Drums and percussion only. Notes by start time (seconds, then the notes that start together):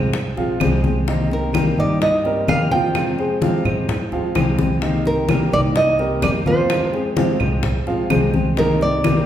0.14 high bongo, high conga
0.37 high bongo, high conga
0.60 high bongo, low bongo, high conga, claves
0.84 high bongo, high conga
1.08 high bongo, high conga
1.31 high bongo, high conga
1.54 high bongo, high conga, claves
1.78 high conga
2.01 high bongo, high conga
2.25 high bongo, high conga
2.48 high bongo, low bongo, high conga, claves
2.71 high bongo, high conga
2.95 high bongo, high conga, claves
3.18 high bongo, high conga
3.42 high bongo, high conga
3.65 high conga, low conga, claves
3.89 high bongo, high conga, low conga
4.12 high bongo, high conga
4.35 high bongo, high conga, claves
4.59 low bongo, high conga
4.82 high bongo, high conga
5.05 high bongo, high conga
5.29 high bongo, high conga, claves
5.52 high conga
5.75 high bongo, high conga
5.99 high bongo, high conga
6.22 high bongo, low bongo, high conga, claves
6.46 high bongo, high conga
6.70 high bongo, high conga, claves
6.93 high bongo, high conga
7.17 high bongo, high conga
7.40 high conga, low conga, claves
7.63 high bongo, high conga, low conga
7.87 high bongo, high conga
8.10 high bongo, low bongo, high conga, claves
8.34 high bongo, high conga
8.57 high bongo
8.81 high bongo, high conga
9.04 high bongo, high conga, claves